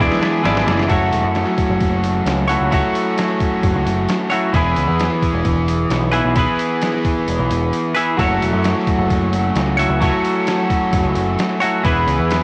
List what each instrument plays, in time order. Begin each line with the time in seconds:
Already playing: overdriven electric guitar E3 B3 D4, string machine G#4 D5 B5 E6
0.00 clean electric guitar E3 G#3 B3 E4 G#4 D5
0.12 snare
0.21 clean electric guitar B3 E4 G#4 D5, overdriven electric guitar D4, snare
0.43 picked electric bass G#1, clean electric guitar E3 G#3 B3 E4 G#4 D5, snare
0.57 snare
0.67 picked electric bass F#1, overdriven electric guitar E3, clean electric guitar B3 E4 G#4 D5, snare
0.79 snare
0.88 picked electric bass F#1, clean electric guitar F#3 A3 E4 F#4 C#5, overdriven electric guitar C#4, kick, open hi-hat
1.13 picked electric bass E1, open hi-hat
1.24 picked electric bass F#2
1.35 snare, open hi-hat
1.58 kick, open hi-hat
1.70 picked electric bass F#1
1.80 picked electric bass F#1, kick, open hi-hat
2.04 open hi-hat
2.25 picked electric bass C#2, snare, open hi-hat
2.47 clean electric guitar F#3 A3 E4 F#4 C#5, open hi-hat
2.60 picked electric bass C#2
2.71 clean electric guitar F#3 A3 E4 F#4 C#5, overdriven electric guitar C#4, kick, open hi-hat
2.95 open hi-hat
3.18 snare, open hi-hat
3.40 kick, open hi-hat
3.63 picked electric bass F#1, kick, open hi-hat
3.74 picked electric bass C#2
3.86 picked electric bass F#1, open hi-hat
4.09 snare, open hi-hat
4.30 clean electric guitar F#3 A3 E4 F#4 C#5, open hi-hat
4.53 picked electric bass E1, clean electric guitar E3 B3 E4 G#4 B4, kick, open hi-hat
4.76 picked electric bass C#2, open hi-hat
4.88 picked electric bass E2
5.00 snare, open hi-hat
5.23 kick, open hi-hat
5.33 picked electric bass E1
5.45 picked electric bass E1, kick, open hi-hat
5.68 open hi-hat
5.90 picked electric bass B1, snare, open hi-hat
6.12 clean electric guitar E3 B3 E4 G#4 B4, open hi-hat
6.24 picked electric bass B1
6.35 clean electric guitar E3 B3 E4 G#4 B4, kick, open hi-hat
6.59 open hi-hat
6.82 snare, open hi-hat
6.94 snare
7.05 kick, open hi-hat
7.28 picked electric bass E1, open hi-hat
7.39 picked electric bass B1
7.51 picked electric bass E1, open hi-hat
7.73 open hi-hat
7.95 clean electric guitar E3 B3 E4 G#4 B4, open hi-hat
8.17 picked electric bass F#1, clean electric guitar F#3 A3 E4 F#4, overdriven electric guitar C#4, kick, open hi-hat
8.21 overdriven electric guitar A4, clean electric guitar C#5
8.42 picked electric bass E1, open hi-hat
8.53 picked electric bass F#2
8.64 snare, open hi-hat
8.77 snare
8.87 kick, open hi-hat
8.98 picked electric bass F#1
9.10 picked electric bass F#1, kick, open hi-hat
9.33 open hi-hat
9.55 picked electric bass C#2, snare, open hi-hat
9.77 clean electric guitar F#3 A3 E4 F#4 C#5, open hi-hat
9.89 picked electric bass C#2
10.00 clean electric guitar F#3 A3 E4 F#4 C#5, overdriven electric guitar C#4 A4, kick, open hi-hat
10.25 open hi-hat
10.47 snare, open hi-hat
10.70 kick, open hi-hat
10.93 picked electric bass F#1, kick, open hi-hat
11.04 picked electric bass C#2
11.15 picked electric bass F#1, open hi-hat
11.39 snare, open hi-hat
11.60 clean electric guitar F#3 A3 E4 F#4 C#5, open hi-hat
11.83 picked electric bass E1, clean electric guitar E3 B3 E4 G#4, kick, open hi-hat
11.88 clean electric guitar B4
12.07 picked electric bass C#2, open hi-hat
12.19 picked electric bass E2
12.31 snare, open hi-hat